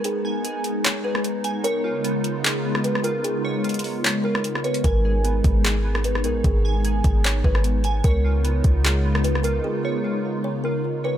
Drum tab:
HH |x-------x---x---x-------x---x---|x-------x---x---x-------x---x---|x-------xxxxo---x-------x---x-x-|x-------x---x---x-------x---x---|
CP |----------------x---------------|----------------x---------------|----------------x---------------|----------------x---------------|
SD |----------------------r---------|----------------------r---r-----|----------------------r---r-----|----------------------r---r-----|
BD |--------------------------------|--------------------------------|--------------------------------|o-----------o-------------------|

HH |x-------x---x---x-------x---x---|x-------x---x---x-------x---x---|--------------------------------|
CP |----------------x---------------|----------------x---------------|--------------------------------|
SD |----------------------r---------|----------------------r---r-----|--------------------------------|
BD |o-----------o-------o-----------|o-----------o-------------------|--------------------------------|